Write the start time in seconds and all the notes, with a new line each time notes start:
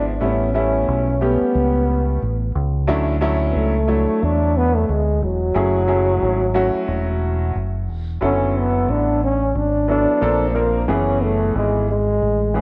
Already playing: G#1 E4
0.20 A1 G3 A3 B3 C#4 E4
0.54 G3 A3 B3 C#4 E4
0.88 B1
1.21 G3 A3 B3 C#4 G4
1.41 muted fingered electric bass stroke
1.55 C#2
2.22 A1
2.55 C#2
2.87 D2 F#3 A3 C#4 D4 E4
3.21 F#3 A3 C#4 D4 E4
3.51 B3
3.55 C#2 A3
3.87 F#3 A3 D4 E4 C#5
4.23 E2 D4
4.57 B3
4.76 A3
4.89 D2 G#3
5.22 E1 F#3
5.54 F#1 F#3 A3 C#4 E4 G#4
5.87 F#3 A3 C#4 E4 G#4
6.22 G#1
6.54 F#3 A3 C#4 E4 F#4
6.88 E1
7.55 F#1
7.89 E1
8.21 F#1 D3 F#3 B3 E4 A4
8.25 C#4
8.58 B3
8.88 A1 D4
9.23 C#4
9.55 G#1 D4
9.88 F#3 B3 D4 E4 A4
10.08 muted fingered electric bass stroke
10.21 A#1 F3 A#3 C4 D4 A4
10.50 F3 A3
10.55 A#3 C4 D4 A#4
10.88 F#1 E3 B3 C#4 G#4
11.23 A3
11.55 G#1 G#3
11.90 G#3
12.22 A1
12.54 E3 B3 C#4 G#4